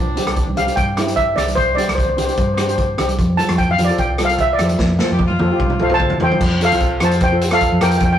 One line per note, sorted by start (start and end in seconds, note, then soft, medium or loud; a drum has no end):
0.00 0.15 C2 medium
0.00 0.48 D4 loud
0.16 0.41 C4 medium
0.16 0.41 D4 medium
0.16 0.42 G4 medium
0.16 closed hi-hat medium
0.16 high conga medium
0.16 low conga medium
0.27 0.46 C2 medium
0.27 cross-stick medium
0.27 closed hi-hat medium
0.36 kick medium
0.36 closed hi-hat medium
0.47 0.56 C2 medium
0.47 high conga medium
0.55 0.67 C2 medium
0.55 0.63 C4 medium
0.55 0.63 D4 medium
0.55 0.64 G4 medium
0.55 0.66 F5 medium
0.55 closed hi-hat medium
0.55 low conga medium
0.67 0.85 C4 medium
0.67 0.86 D4 medium
0.67 0.86 G4 medium
0.67 closed hi-hat medium
0.76 1.34 G2 medium
0.76 1.18 G5 medium
0.76 kick loud
0.76 closed hi-hat medium
0.96 1.03 C4 medium
0.96 1.04 D4 medium
0.96 1.04 E4 medium
0.96 cross-stick medium
0.96 closed hi-hat medium
0.96 high conga medium
1.06 1.25 C4 medium
1.06 1.26 D4 medium
1.06 1.26 G4 medium
1.06 closed hi-hat medium
1.16 1.38 E5 loud
1.16 kick medium
1.16 closed hi-hat medium
1.16 low conga medium
1.36 1.56 C2 medium
1.36 1.61 C4 medium
1.36 1.61 D4 medium
1.36 1.62 G4 medium
1.36 1.45 D5 medium
1.36 cross-stick medium
1.36 closed hi-hat medium
1.36 low conga medium
1.47 closed hi-hat medium
1.47 high conga medium
1.55 1.77 C2 medium
1.55 1.78 C5 loud
1.55 kick loud
1.55 closed hi-hat medium
1.75 2.02 C4 medium
1.75 2.02 D4 medium
1.75 2.03 G4 medium
1.75 1.97 D5 medium
1.75 closed hi-hat medium
1.75 high conga medium
1.75 low conga medium
1.88 2.07 C2 medium
1.88 cross-stick medium
1.88 closed hi-hat medium
1.95 2.02 C5 medium
1.95 kick medium
1.95 closed hi-hat medium
2.03 2.08 C5 medium
2.08 2.17 C2 medium
2.08 2.16 C5 medium
2.08 high conga medium
2.17 2.28 C2 medium
2.17 2.24 C4 medium
2.17 2.24 D4 medium
2.17 2.25 G4 medium
2.17 2.24 C5 soft
2.17 closed hi-hat medium
2.17 low conga medium
2.25 2.46 C4 medium
2.25 2.47 D4 medium
2.25 2.31 C5 medium
2.25 closed hi-hat medium
2.29 2.47 G4 medium
2.29 2.37 C5 soft
2.37 2.95 G2 medium
2.37 2.47 C5 soft
2.37 kick loud
2.37 closed hi-hat medium
2.48 2.53 C5 soft
2.54 2.64 C4 medium
2.54 2.65 D4 medium
2.54 2.61 C5 soft
2.54 cross-stick medium
2.54 closed hi-hat medium
2.59 2.65 G4 medium
2.59 2.67 C5 soft
2.59 high conga medium
2.67 2.86 C4 medium
2.67 2.87 D4 medium
2.67 2.87 G4 medium
2.67 2.75 C5 medium
2.67 closed hi-hat medium
2.76 2.86 C5 medium
2.76 kick medium
2.76 closed hi-hat medium
2.76 low conga medium
2.98 3.18 C2 medium
2.98 3.19 C4 medium
2.98 3.19 D4 medium
2.98 3.20 G4 medium
2.98 cross-stick medium
2.98 closed hi-hat medium
2.98 low conga medium
3.09 closed hi-hat medium
3.09 high conga medium
3.19 3.38 F2 medium
3.19 kick loud
3.19 closed hi-hat medium
3.37 3.63 C4 medium
3.37 3.63 F4 medium
3.37 3.64 A4 medium
3.37 3.57 A5 loud
3.37 closed hi-hat medium
3.37 high conga medium
3.37 low conga medium
3.49 3.68 F2 medium
3.49 cross-stick medium
3.49 closed hi-hat medium
3.58 3.73 G5 medium
3.58 kick medium
3.58 closed hi-hat medium
3.69 3.78 F2 loud
3.69 3.86 F5 medium
3.69 high conga medium
3.78 3.89 F2 medium
3.78 3.85 C4 medium
3.78 3.85 F4 medium
3.78 3.86 G4 medium
3.78 closed hi-hat medium
3.78 low conga medium
3.85 4.07 C4 medium
3.85 3.99 D5 medium
3.89 4.08 F4 medium
3.89 4.08 A4 medium
3.89 closed hi-hat medium
3.98 4.56 C2 loud
3.98 4.27 G5 medium
3.98 kick loud
3.98 closed hi-hat medium
4.18 4.25 C4 medium
4.18 4.26 F4 medium
4.18 4.26 A4 medium
4.18 cross-stick medium
4.18 closed hi-hat medium
4.18 high conga medium
4.25 4.40 F5 medium
4.29 4.48 C4 medium
4.29 4.48 F4 medium
4.29 4.49 A4 medium
4.29 closed hi-hat medium
4.38 4.54 E5 medium
4.38 kick medium
4.38 closed hi-hat medium
4.38 low conga medium
4.53 4.91 D5 medium
4.59 4.78 F2 medium
4.59 4.84 C4 medium
4.59 4.85 F4 medium
4.59 4.85 A4 medium
4.59 cross-stick medium
4.59 closed hi-hat medium
4.59 low conga medium
4.69 closed hi-hat medium
4.69 high conga medium
4.79 4.99 F2 medium
4.79 kick loud
4.79 snare medium
4.99 5.24 C4 medium
4.99 5.25 F4 medium
4.99 5.13 A4 loud
4.99 5.25 C5 medium
4.99 snare medium
4.99 high conga medium
4.99 low conga medium
5.11 5.30 F2 medium
5.11 5.26 G4 medium
5.19 kick medium
5.19 high tom medium
5.27 6.04 F4 medium
5.27 high conga medium
5.31 5.40 F2 loud
5.39 5.50 F2 medium
5.39 5.47 C4 medium
5.39 5.47 F4 medium
5.39 5.48 A4 loud
5.39 high tom medium
5.39 low conga medium
5.51 5.69 C4 medium
5.51 5.70 F4 medium
5.51 5.70 G4 loud
5.59 5.79 C2 loud
5.59 kick loud
5.59 mid tom medium
5.59 high conga medium
5.70 mid tom medium
5.79 5.99 C2 medium
5.79 5.87 C4 medium
5.79 5.88 F4 medium
5.79 5.91 A4 medium
5.79 5.88 C5 medium
5.79 5.93 F5 medium
5.79 mid tom medium
5.79 high conga medium
5.90 6.09 C4 medium
5.90 6.10 F4 medium
5.90 6.10 A4 loud
5.90 6.19 C5 medium
5.90 mid tom medium
5.94 6.21 A5 loud
5.99 6.19 D2 medium
5.99 kick medium
5.99 mid tom medium
5.99 low conga medium
6.10 floor tom medium
6.20 6.39 E2 medium
6.20 6.41 C4 medium
6.20 6.41 F4 medium
6.20 6.42 A4 medium
6.20 6.59 C5 medium
6.20 6.60 G5 medium
6.20 floor tom loud
6.20 low conga medium
6.31 floor tom medium
6.31 high conga medium
6.41 6.70 F2 medium
6.41 kick loud
6.41 crash loud
6.61 6.67 C4 medium
6.61 6.68 F4 medium
6.61 6.68 A4 medium
6.61 7.00 A4 medium
6.61 closed hi-hat medium
6.65 7.05 F5 medium
6.72 7.00 C2 medium
6.72 6.90 C4 medium
6.72 6.91 F4 medium
6.72 6.91 A4 medium
6.72 closed hi-hat medium
6.80 kick medium
6.80 closed hi-hat medium
7.00 7.68 F2 loud
7.00 7.20 C4 medium
7.00 7.20 F4 medium
7.00 7.21 A4 medium
7.00 7.21 C5 medium
7.00 cross-stick medium
7.00 closed hi-hat medium
7.05 7.24 A5 medium
7.11 closed hi-hat medium
7.20 7.51 C5 medium
7.20 7.51 G5 medium
7.20 kick loud
7.20 closed hi-hat medium
7.32 7.44 C4 medium
7.32 7.44 F4 medium
7.32 7.44 A4 medium
7.41 closed hi-hat medium
7.51 7.70 C4 medium
7.51 7.71 F4 medium
7.51 7.71 A4 medium
7.51 7.80 A4 medium
7.51 7.83 F5 loud
7.51 cross-stick medium
7.51 closed hi-hat medium
7.60 kick medium
7.60 closed hi-hat medium
7.72 7.81 F2 medium
7.81 8.01 F2 loud
7.81 8.06 C4 medium
7.81 8.06 F4 medium
7.81 8.07 A4 medium
7.81 7.89 A#4 medium
7.81 7.89 G5 medium
7.81 cross-stick medium
7.81 closed hi-hat loud
7.90 7.97 G5 medium
7.90 closed hi-hat medium
7.98 8.19 F2 loud
7.98 8.04 G5 medium
7.98 kick loud
7.98 closed hi-hat medium
8.05 8.12 G5 medium
8.13 8.19 G5 medium